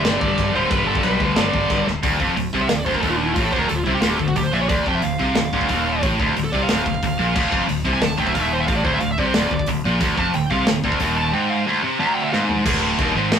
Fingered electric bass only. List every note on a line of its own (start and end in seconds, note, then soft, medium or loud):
0.05 0.17 G1 loud
0.22 0.34 G1 loud
0.38 0.50 G1 loud
0.54 0.66 D1 medium
0.71 0.83 G1 loud
0.87 0.99 G1 medium
1.04 1.16 B1 medium
1.20 1.32 D2 medium
1.36 1.49 G1 loud
1.54 1.66 G1 medium
1.70 1.83 G1 loud
1.87 1.99 D1 medium
2.03 2.19 D1 medium
2.20 2.36 F1 medium
2.37 2.52 D1 medium
2.53 2.69 C2 medium
2.69 2.85 D1 medium
2.87 3.02 D1 medium
3.03 3.34 D#1 loud
3.36 3.52 A1 medium
3.53 3.69 D1 medium
3.70 3.85 D1 medium
3.86 4.02 C2 medium
4.03 4.19 D1 medium
4.20 4.35 D1 medium
4.36 4.52 D1 medium
4.53 4.69 A#1 medium
4.69 4.85 D1 medium
4.86 5.02 F1 loud
5.03 5.19 D1 medium
5.19 5.35 C2 medium
5.38 5.52 D1 medium
5.53 5.68 D1 medium
5.69 6.01 D#1 loud
6.03 6.18 A1 medium
6.20 6.35 D1 loud
6.37 6.52 D1 medium
6.53 6.68 C2 medium
6.70 6.85 D1 medium
6.86 7.02 D1 medium
7.03 7.18 D1 medium
7.19 7.34 A#1 loud
7.36 7.51 D1 medium
7.52 7.68 F1 loud
7.69 7.84 D1 medium
7.85 8.01 C2 medium
8.02 8.18 D1 medium
8.19 8.34 D1 medium
8.35 8.66 D#1 loud
8.69 8.84 A1 loud
8.85 9.00 D1 loud
9.03 9.18 D1 medium
9.18 9.34 C2 medium
9.35 9.50 D1 loud
9.51 9.67 D1 medium
9.68 9.83 D1 medium
9.86 10.00 A#1 loud
10.01 10.17 D1 medium
10.18 10.33 F1 medium
10.35 10.50 D1 medium
10.51 10.66 C2 medium
10.68 10.83 D1 medium
10.84 10.99 D1 loud
11.00 11.31 D#1 loud
12.66 12.97 D1 loud
12.99 13.14 D#1 medium
13.15 13.31 G#1 medium
13.31 13.39 A1 loud